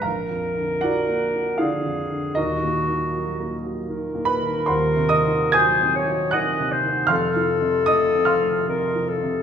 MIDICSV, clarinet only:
0, 0, Header, 1, 2, 480
1, 0, Start_track
1, 0, Tempo, 769231
1, 31, Time_signature, 3, 2, 24, 8
1, 2431, Tempo, 786370
1, 2911, Tempo, 867052
1, 3391, Tempo, 777202
1, 4831, Tempo, 802139
1, 5756, End_track
2, 0, Start_track
2, 0, Title_t, "Clarinet"
2, 0, Program_c, 0, 71
2, 30, Note_on_c, 0, 70, 82
2, 994, Note_on_c, 0, 68, 78
2, 1003, Note_off_c, 0, 70, 0
2, 1473, Note_off_c, 0, 68, 0
2, 1477, Note_on_c, 0, 66, 93
2, 2235, Note_off_c, 0, 66, 0
2, 2434, Note_on_c, 0, 70, 104
2, 3388, Note_on_c, 0, 72, 97
2, 3397, Note_off_c, 0, 70, 0
2, 3640, Note_on_c, 0, 73, 89
2, 3650, Note_off_c, 0, 72, 0
2, 3878, Note_on_c, 0, 75, 95
2, 3887, Note_off_c, 0, 73, 0
2, 4112, Note_on_c, 0, 72, 81
2, 4121, Note_off_c, 0, 75, 0
2, 4357, Note_on_c, 0, 69, 104
2, 4366, Note_off_c, 0, 72, 0
2, 5310, Note_off_c, 0, 69, 0
2, 5313, Note_on_c, 0, 70, 83
2, 5552, Note_on_c, 0, 69, 81
2, 5561, Note_off_c, 0, 70, 0
2, 5756, Note_off_c, 0, 69, 0
2, 5756, End_track
0, 0, End_of_file